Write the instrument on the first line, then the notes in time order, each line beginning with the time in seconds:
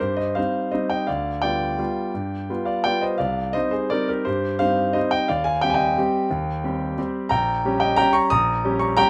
grand piano
0.00 G2 G4 C5
0.17 C5 D#5
0.35 G3 C4 D#4 C5 F5
0.71 G3 C4 D#4 C5 D#5
0.90 D#5 G5
1.07 D2 D5 F5
1.42 G3 B3 F4 D5 G5
1.78 G3 B3 F4
2.14 G2
2.50 G3 B3 F4
2.65 D5 F5
2.84 G3 B3 F4 D5 G5
3.01 C5 D#5
3.18 C2 D5 F5
3.53 G3 C4 D#4 C5 D#5
3.71 G#4 C5
3.90 G3 C4 D#4 A#4 D5
4.09 G4 A#4
4.25 G2 G4 C5
4.59 G3 C4 D#4 C5 F5
4.93 G3 C4 D#4 C5 D#5
5.11 D#5 G5
5.28 D#2 D5 F5
5.44 F5 G#5
5.61 G3 C4 G4 G5
5.70 G#5
5.74 D#5 G5
5.98 G3 C4 G4
6.31 D#2
6.64 G3 C4 G4
6.98 G3 C4 G4
7.29 A#1 G5 A#5
7.65 G3 C#4 G4
7.80 D#5 G5
7.96 G3 C#4 G4 G5 A#5
8.13 A#5 C#6
8.30 A#1 A#5 D#6
8.65 G3 C#4 G4
8.79 A#5 C#6
8.97 G3 C#4 G4 G5 A#5